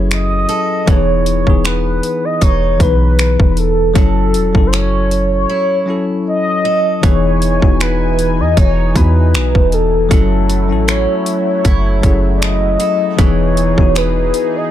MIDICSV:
0, 0, Header, 1, 7, 480
1, 0, Start_track
1, 0, Key_signature, 4, "major"
1, 0, Tempo, 769231
1, 548, Time_signature, 4, 2, 24, 8
1, 9178, End_track
2, 0, Start_track
2, 0, Title_t, "Soft synth lead"
2, 0, Program_c, 0, 80
2, 73, Note_on_c, 0, 75, 106
2, 552, Note_on_c, 0, 73, 113
2, 561, Note_off_c, 0, 75, 0
2, 1032, Note_on_c, 0, 71, 96
2, 1041, Note_off_c, 0, 73, 0
2, 1403, Note_on_c, 0, 75, 100
2, 1412, Note_off_c, 0, 71, 0
2, 1514, Note_on_c, 0, 73, 99
2, 1523, Note_off_c, 0, 75, 0
2, 1754, Note_on_c, 0, 71, 102
2, 1763, Note_off_c, 0, 73, 0
2, 2193, Note_off_c, 0, 71, 0
2, 2193, Note_on_c, 0, 71, 62
2, 2236, Note_on_c, 0, 69, 83
2, 2245, Note_off_c, 0, 71, 0
2, 2472, Note_off_c, 0, 69, 0
2, 2476, Note_on_c, 0, 69, 99
2, 2914, Note_on_c, 0, 72, 72
2, 2923, Note_off_c, 0, 69, 0
2, 2957, Note_on_c, 0, 73, 93
2, 2966, Note_off_c, 0, 72, 0
2, 3322, Note_off_c, 0, 73, 0
2, 3326, Note_on_c, 0, 73, 101
2, 3777, Note_off_c, 0, 73, 0
2, 3917, Note_on_c, 0, 75, 109
2, 4395, Note_on_c, 0, 73, 110
2, 4404, Note_off_c, 0, 75, 0
2, 4874, Note_on_c, 0, 71, 93
2, 4883, Note_off_c, 0, 73, 0
2, 5245, Note_on_c, 0, 75, 99
2, 5254, Note_off_c, 0, 71, 0
2, 5351, Note_off_c, 0, 75, 0
2, 5354, Note_on_c, 0, 73, 104
2, 5592, Note_on_c, 0, 71, 96
2, 5602, Note_off_c, 0, 73, 0
2, 6075, Note_on_c, 0, 69, 83
2, 6084, Note_off_c, 0, 71, 0
2, 6311, Note_off_c, 0, 69, 0
2, 6315, Note_on_c, 0, 69, 95
2, 6791, Note_on_c, 0, 73, 90
2, 6800, Note_off_c, 0, 69, 0
2, 7159, Note_off_c, 0, 73, 0
2, 7162, Note_on_c, 0, 73, 100
2, 7615, Note_off_c, 0, 73, 0
2, 7715, Note_on_c, 0, 74, 72
2, 7756, Note_on_c, 0, 75, 100
2, 7765, Note_off_c, 0, 74, 0
2, 8236, Note_on_c, 0, 73, 115
2, 8245, Note_off_c, 0, 75, 0
2, 8718, Note_on_c, 0, 71, 97
2, 8727, Note_off_c, 0, 73, 0
2, 9088, Note_on_c, 0, 75, 92
2, 9097, Note_off_c, 0, 71, 0
2, 9178, Note_off_c, 0, 75, 0
2, 9178, End_track
3, 0, Start_track
3, 0, Title_t, "Analog synth pad"
3, 0, Program_c, 1, 89
3, 4386, Note_on_c, 1, 52, 82
3, 4386, Note_on_c, 1, 63, 74
3, 4386, Note_on_c, 1, 80, 88
3, 6287, Note_off_c, 1, 52, 0
3, 6288, Note_off_c, 1, 63, 0
3, 6288, Note_off_c, 1, 80, 0
3, 6307, Note_on_c, 1, 57, 85
3, 6308, Note_on_c, 1, 54, 77
3, 6310, Note_on_c, 1, 64, 76
3, 8208, Note_off_c, 1, 57, 0
3, 8209, Note_off_c, 1, 54, 0
3, 8210, Note_off_c, 1, 64, 0
3, 8224, Note_on_c, 1, 68, 85
3, 8225, Note_on_c, 1, 63, 73
3, 8227, Note_on_c, 1, 52, 79
3, 9178, Note_off_c, 1, 52, 0
3, 9178, Note_off_c, 1, 63, 0
3, 9178, Note_off_c, 1, 68, 0
3, 9178, End_track
4, 0, Start_track
4, 0, Title_t, "Tine electric piano"
4, 0, Program_c, 2, 4
4, 0, Control_c, 2, 64, 127
4, 0, Note_on_c, 2, 54, 70
4, 0, Note_on_c, 2, 61, 65
4, 0, Note_on_c, 2, 64, 68
4, 0, Note_on_c, 2, 68, 78
4, 0, Note_on_c, 2, 71, 78
4, 308, Note_off_c, 2, 54, 0
4, 312, Note_off_c, 2, 61, 0
4, 317, Note_off_c, 2, 64, 0
4, 322, Note_off_c, 2, 68, 0
4, 537, Note_on_c, 2, 52, 89
4, 546, Note_on_c, 2, 59, 82
4, 555, Control_c, 2, 64, 0
4, 555, Note_on_c, 2, 63, 77
4, 557, Note_off_c, 2, 71, 0
4, 565, Note_on_c, 2, 68, 89
4, 683, Control_c, 2, 64, 127
4, 786, Note_off_c, 2, 52, 0
4, 790, Note_off_c, 2, 59, 0
4, 795, Note_off_c, 2, 63, 0
4, 800, Note_off_c, 2, 68, 0
4, 906, Note_on_c, 2, 52, 70
4, 915, Note_on_c, 2, 59, 68
4, 925, Note_on_c, 2, 63, 65
4, 934, Note_on_c, 2, 68, 83
4, 1472, Note_off_c, 2, 52, 0
4, 1477, Note_off_c, 2, 59, 0
4, 1482, Note_off_c, 2, 63, 0
4, 1486, Note_off_c, 2, 68, 0
4, 1735, Note_on_c, 2, 52, 67
4, 1745, Note_on_c, 2, 59, 64
4, 1755, Note_on_c, 2, 63, 60
4, 1764, Note_on_c, 2, 71, 77
4, 2228, Note_off_c, 2, 52, 0
4, 2233, Note_off_c, 2, 59, 0
4, 2238, Note_off_c, 2, 63, 0
4, 2242, Note_off_c, 2, 71, 0
4, 2456, Note_on_c, 2, 54, 87
4, 2465, Note_on_c, 2, 61, 81
4, 2473, Note_on_c, 2, 64, 79
4, 2476, Control_c, 2, 64, 0
4, 2483, Note_on_c, 2, 69, 95
4, 2598, Control_c, 2, 64, 127
4, 2705, Note_off_c, 2, 54, 0
4, 2710, Note_off_c, 2, 61, 0
4, 2714, Note_off_c, 2, 64, 0
4, 2719, Note_off_c, 2, 69, 0
4, 2825, Note_on_c, 2, 54, 72
4, 2836, Note_on_c, 2, 61, 67
4, 2845, Note_on_c, 2, 64, 66
4, 2854, Note_on_c, 2, 69, 78
4, 3392, Note_off_c, 2, 54, 0
4, 3397, Note_off_c, 2, 61, 0
4, 3401, Note_off_c, 2, 64, 0
4, 3406, Note_off_c, 2, 69, 0
4, 3655, Note_on_c, 2, 54, 72
4, 3665, Note_on_c, 2, 61, 68
4, 3673, Note_on_c, 2, 64, 61
4, 3682, Note_on_c, 2, 69, 79
4, 4148, Note_off_c, 2, 54, 0
4, 4153, Note_off_c, 2, 61, 0
4, 4157, Note_off_c, 2, 64, 0
4, 4162, Note_off_c, 2, 69, 0
4, 4378, Note_on_c, 2, 52, 81
4, 4386, Note_on_c, 2, 59, 79
4, 4396, Control_c, 2, 64, 0
4, 4396, Note_on_c, 2, 63, 74
4, 4405, Note_on_c, 2, 68, 96
4, 4500, Control_c, 2, 64, 127
4, 4626, Note_off_c, 2, 52, 0
4, 4630, Note_off_c, 2, 59, 0
4, 4635, Note_off_c, 2, 63, 0
4, 4640, Note_off_c, 2, 68, 0
4, 4745, Note_on_c, 2, 52, 71
4, 4753, Note_on_c, 2, 59, 66
4, 4764, Note_on_c, 2, 63, 66
4, 4772, Note_on_c, 2, 66, 81
4, 5311, Note_off_c, 2, 52, 0
4, 5316, Note_off_c, 2, 59, 0
4, 5321, Note_off_c, 2, 63, 0
4, 5325, Note_off_c, 2, 66, 0
4, 5577, Note_on_c, 2, 52, 67
4, 5586, Note_on_c, 2, 59, 58
4, 5595, Note_on_c, 2, 63, 61
4, 5604, Note_on_c, 2, 66, 72
4, 6069, Note_off_c, 2, 52, 0
4, 6074, Note_off_c, 2, 59, 0
4, 6078, Note_off_c, 2, 63, 0
4, 6083, Note_off_c, 2, 66, 0
4, 6295, Note_on_c, 2, 54, 87
4, 6305, Note_on_c, 2, 61, 76
4, 6314, Note_on_c, 2, 64, 75
4, 6315, Control_c, 2, 64, 0
4, 6323, Note_on_c, 2, 69, 97
4, 6427, Control_c, 2, 64, 127
4, 6545, Note_off_c, 2, 54, 0
4, 6550, Note_off_c, 2, 61, 0
4, 6554, Note_off_c, 2, 64, 0
4, 6559, Note_off_c, 2, 69, 0
4, 6665, Note_on_c, 2, 54, 74
4, 6674, Note_on_c, 2, 61, 69
4, 6683, Note_on_c, 2, 64, 68
4, 6692, Note_on_c, 2, 69, 80
4, 7232, Note_off_c, 2, 54, 0
4, 7236, Note_off_c, 2, 61, 0
4, 7240, Note_off_c, 2, 64, 0
4, 7245, Note_off_c, 2, 69, 0
4, 7496, Note_on_c, 2, 54, 73
4, 7505, Note_on_c, 2, 61, 67
4, 7514, Note_on_c, 2, 64, 66
4, 7523, Note_on_c, 2, 68, 82
4, 7989, Note_off_c, 2, 54, 0
4, 7993, Note_off_c, 2, 61, 0
4, 7997, Note_off_c, 2, 64, 0
4, 8002, Note_off_c, 2, 68, 0
4, 8217, Note_on_c, 2, 52, 90
4, 8227, Note_on_c, 2, 59, 81
4, 8236, Control_c, 2, 64, 0
4, 8236, Note_on_c, 2, 63, 76
4, 8246, Note_on_c, 2, 68, 97
4, 8341, Control_c, 2, 64, 127
4, 8466, Note_off_c, 2, 52, 0
4, 8471, Note_off_c, 2, 59, 0
4, 8475, Note_off_c, 2, 63, 0
4, 8480, Note_off_c, 2, 68, 0
4, 8588, Note_on_c, 2, 52, 72
4, 8598, Note_on_c, 2, 59, 67
4, 8607, Note_on_c, 2, 63, 67
4, 8617, Note_on_c, 2, 66, 80
4, 9153, Note_off_c, 2, 52, 0
4, 9158, Note_off_c, 2, 59, 0
4, 9162, Note_off_c, 2, 63, 0
4, 9167, Note_off_c, 2, 66, 0
4, 9178, End_track
5, 0, Start_track
5, 0, Title_t, "Steel-string acoustic guitar"
5, 0, Program_c, 3, 25
5, 0, Note_on_c, 3, 54, 78
5, 0, Note_on_c, 3, 61, 62
5, 0, Note_on_c, 3, 64, 61
5, 306, Note_on_c, 3, 69, 61
5, 545, Note_on_c, 3, 52, 77
5, 548, Note_off_c, 3, 54, 0
5, 598, Note_off_c, 3, 69, 0
5, 599, Note_off_c, 3, 61, 0
5, 1026, Note_on_c, 3, 59, 62
5, 1503, Note_off_c, 3, 64, 0
5, 1505, Note_on_c, 3, 63, 62
5, 2467, Note_on_c, 3, 54, 78
5, 2486, Note_off_c, 3, 52, 0
5, 2518, Note_off_c, 3, 59, 0
5, 2518, Note_off_c, 3, 63, 0
5, 2949, Note_on_c, 3, 61, 66
5, 3429, Note_on_c, 3, 64, 60
5, 4150, Note_on_c, 3, 69, 66
5, 4387, Note_off_c, 3, 54, 0
5, 4389, Note_on_c, 3, 52, 80
5, 4440, Note_off_c, 3, 61, 0
5, 4440, Note_off_c, 3, 69, 0
5, 4868, Note_on_c, 3, 59, 64
5, 5346, Note_off_c, 3, 64, 0
5, 5349, Note_on_c, 3, 63, 59
5, 6307, Note_on_c, 3, 54, 75
5, 6326, Note_off_c, 3, 52, 0
5, 6360, Note_off_c, 3, 59, 0
5, 6360, Note_off_c, 3, 63, 0
5, 6787, Note_on_c, 3, 61, 60
5, 7267, Note_on_c, 3, 64, 65
5, 7987, Note_on_c, 3, 69, 67
5, 8225, Note_off_c, 3, 54, 0
5, 8227, Note_on_c, 3, 52, 81
5, 8279, Note_off_c, 3, 61, 0
5, 8279, Note_off_c, 3, 69, 0
5, 8706, Note_on_c, 3, 59, 64
5, 9178, Note_off_c, 3, 52, 0
5, 9178, Note_off_c, 3, 59, 0
5, 9178, Note_off_c, 3, 64, 0
5, 9178, End_track
6, 0, Start_track
6, 0, Title_t, "808-style bass"
6, 0, Program_c, 4, 38
6, 0, Note_on_c, 4, 30, 105
6, 289, Note_off_c, 4, 30, 0
6, 548, Note_on_c, 4, 28, 106
6, 902, Note_off_c, 4, 28, 0
6, 918, Note_on_c, 4, 28, 93
6, 1254, Note_off_c, 4, 28, 0
6, 1510, Note_on_c, 4, 28, 105
6, 1739, Note_off_c, 4, 28, 0
6, 1750, Note_on_c, 4, 35, 106
6, 2104, Note_off_c, 4, 35, 0
6, 2121, Note_on_c, 4, 28, 104
6, 2456, Note_off_c, 4, 28, 0
6, 2469, Note_on_c, 4, 30, 102
6, 2712, Note_on_c, 4, 28, 92
6, 2721, Note_off_c, 4, 30, 0
6, 2833, Note_off_c, 4, 28, 0
6, 2840, Note_on_c, 4, 30, 100
6, 3405, Note_off_c, 4, 30, 0
6, 4390, Note_on_c, 4, 28, 106
6, 4744, Note_off_c, 4, 28, 0
6, 4759, Note_on_c, 4, 28, 101
6, 5241, Note_on_c, 4, 40, 91
6, 5251, Note_off_c, 4, 28, 0
6, 5344, Note_off_c, 4, 40, 0
6, 5350, Note_on_c, 4, 28, 109
6, 5579, Note_off_c, 4, 28, 0
6, 5590, Note_on_c, 4, 40, 102
6, 5832, Note_on_c, 4, 35, 91
6, 5842, Note_off_c, 4, 40, 0
6, 5953, Note_off_c, 4, 35, 0
6, 5961, Note_on_c, 4, 28, 101
6, 6296, Note_off_c, 4, 28, 0
6, 6309, Note_on_c, 4, 30, 104
6, 6682, Note_on_c, 4, 33, 92
6, 6692, Note_off_c, 4, 30, 0
6, 6908, Note_off_c, 4, 33, 0
6, 7271, Note_on_c, 4, 30, 105
6, 7500, Note_off_c, 4, 30, 0
6, 7511, Note_on_c, 4, 30, 105
6, 7970, Note_off_c, 4, 30, 0
6, 8230, Note_on_c, 4, 28, 106
6, 8584, Note_off_c, 4, 28, 0
6, 8600, Note_on_c, 4, 28, 98
6, 8935, Note_off_c, 4, 28, 0
6, 9178, End_track
7, 0, Start_track
7, 0, Title_t, "Drums"
7, 68, Note_on_c, 9, 42, 69
7, 72, Note_on_c, 9, 26, 103
7, 130, Note_off_c, 9, 42, 0
7, 134, Note_off_c, 9, 26, 0
7, 304, Note_on_c, 9, 42, 54
7, 366, Note_off_c, 9, 42, 0
7, 546, Note_on_c, 9, 36, 115
7, 546, Note_on_c, 9, 42, 59
7, 608, Note_off_c, 9, 42, 0
7, 609, Note_off_c, 9, 36, 0
7, 788, Note_on_c, 9, 42, 65
7, 850, Note_off_c, 9, 42, 0
7, 916, Note_on_c, 9, 36, 75
7, 978, Note_off_c, 9, 36, 0
7, 1029, Note_on_c, 9, 42, 66
7, 1032, Note_on_c, 9, 26, 106
7, 1091, Note_off_c, 9, 42, 0
7, 1095, Note_off_c, 9, 26, 0
7, 1269, Note_on_c, 9, 42, 59
7, 1331, Note_off_c, 9, 42, 0
7, 1508, Note_on_c, 9, 36, 82
7, 1508, Note_on_c, 9, 42, 82
7, 1570, Note_off_c, 9, 36, 0
7, 1571, Note_off_c, 9, 42, 0
7, 1747, Note_on_c, 9, 36, 81
7, 1748, Note_on_c, 9, 42, 67
7, 1810, Note_off_c, 9, 36, 0
7, 1810, Note_off_c, 9, 42, 0
7, 1989, Note_on_c, 9, 42, 70
7, 1993, Note_on_c, 9, 26, 110
7, 2051, Note_off_c, 9, 42, 0
7, 2055, Note_off_c, 9, 26, 0
7, 2119, Note_on_c, 9, 36, 92
7, 2181, Note_off_c, 9, 36, 0
7, 2227, Note_on_c, 9, 42, 51
7, 2289, Note_off_c, 9, 42, 0
7, 2468, Note_on_c, 9, 36, 114
7, 2468, Note_on_c, 9, 42, 60
7, 2530, Note_off_c, 9, 36, 0
7, 2531, Note_off_c, 9, 42, 0
7, 2709, Note_on_c, 9, 42, 68
7, 2771, Note_off_c, 9, 42, 0
7, 2838, Note_on_c, 9, 36, 82
7, 2900, Note_off_c, 9, 36, 0
7, 2952, Note_on_c, 9, 42, 65
7, 2956, Note_on_c, 9, 26, 101
7, 3015, Note_off_c, 9, 42, 0
7, 3018, Note_off_c, 9, 26, 0
7, 3191, Note_on_c, 9, 42, 58
7, 3253, Note_off_c, 9, 42, 0
7, 4388, Note_on_c, 9, 36, 110
7, 4388, Note_on_c, 9, 42, 58
7, 4450, Note_off_c, 9, 36, 0
7, 4451, Note_off_c, 9, 42, 0
7, 4629, Note_on_c, 9, 42, 66
7, 4691, Note_off_c, 9, 42, 0
7, 4757, Note_on_c, 9, 36, 75
7, 4820, Note_off_c, 9, 36, 0
7, 4871, Note_on_c, 9, 42, 67
7, 4874, Note_on_c, 9, 26, 108
7, 4933, Note_off_c, 9, 42, 0
7, 4937, Note_off_c, 9, 26, 0
7, 5108, Note_on_c, 9, 42, 56
7, 5171, Note_off_c, 9, 42, 0
7, 5348, Note_on_c, 9, 36, 84
7, 5348, Note_on_c, 9, 42, 79
7, 5411, Note_off_c, 9, 36, 0
7, 5411, Note_off_c, 9, 42, 0
7, 5588, Note_on_c, 9, 36, 83
7, 5589, Note_on_c, 9, 42, 65
7, 5651, Note_off_c, 9, 36, 0
7, 5651, Note_off_c, 9, 42, 0
7, 5831, Note_on_c, 9, 42, 69
7, 5835, Note_on_c, 9, 26, 109
7, 5893, Note_off_c, 9, 42, 0
7, 5897, Note_off_c, 9, 26, 0
7, 5959, Note_on_c, 9, 36, 90
7, 6022, Note_off_c, 9, 36, 0
7, 6067, Note_on_c, 9, 42, 54
7, 6129, Note_off_c, 9, 42, 0
7, 6308, Note_on_c, 9, 36, 107
7, 6309, Note_on_c, 9, 42, 62
7, 6370, Note_off_c, 9, 36, 0
7, 6372, Note_off_c, 9, 42, 0
7, 6549, Note_on_c, 9, 42, 69
7, 6612, Note_off_c, 9, 42, 0
7, 6790, Note_on_c, 9, 42, 68
7, 6794, Note_on_c, 9, 26, 101
7, 6853, Note_off_c, 9, 42, 0
7, 6856, Note_off_c, 9, 26, 0
7, 7028, Note_on_c, 9, 42, 58
7, 7090, Note_off_c, 9, 42, 0
7, 7269, Note_on_c, 9, 36, 84
7, 7269, Note_on_c, 9, 42, 82
7, 7331, Note_off_c, 9, 36, 0
7, 7331, Note_off_c, 9, 42, 0
7, 7509, Note_on_c, 9, 36, 81
7, 7509, Note_on_c, 9, 42, 67
7, 7571, Note_off_c, 9, 36, 0
7, 7572, Note_off_c, 9, 42, 0
7, 7750, Note_on_c, 9, 42, 65
7, 7754, Note_on_c, 9, 26, 113
7, 7812, Note_off_c, 9, 42, 0
7, 7816, Note_off_c, 9, 26, 0
7, 7985, Note_on_c, 9, 42, 56
7, 8048, Note_off_c, 9, 42, 0
7, 8228, Note_on_c, 9, 36, 112
7, 8228, Note_on_c, 9, 42, 62
7, 8290, Note_off_c, 9, 36, 0
7, 8290, Note_off_c, 9, 42, 0
7, 8469, Note_on_c, 9, 42, 69
7, 8531, Note_off_c, 9, 42, 0
7, 8597, Note_on_c, 9, 36, 79
7, 8660, Note_off_c, 9, 36, 0
7, 8710, Note_on_c, 9, 42, 62
7, 8713, Note_on_c, 9, 26, 102
7, 8773, Note_off_c, 9, 42, 0
7, 8776, Note_off_c, 9, 26, 0
7, 8948, Note_on_c, 9, 42, 59
7, 9010, Note_off_c, 9, 42, 0
7, 9178, End_track
0, 0, End_of_file